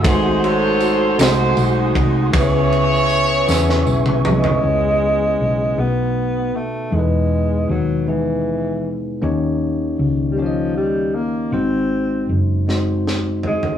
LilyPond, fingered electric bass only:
\new Staff \with { instrumentName = "Fingered electric bass" } { \clef bass \time 6/8 \key cis \minor \tempo 4. = 52 gis,,4. bis,,8 b,,8 bis,,8 | cis,4. e,8 b,,8 bis,,8 | cis,4 b,,8 b,,4 r8 | e,4 dis,2 |
dis,4 cis,2 | gis,,4 fis,,2 | }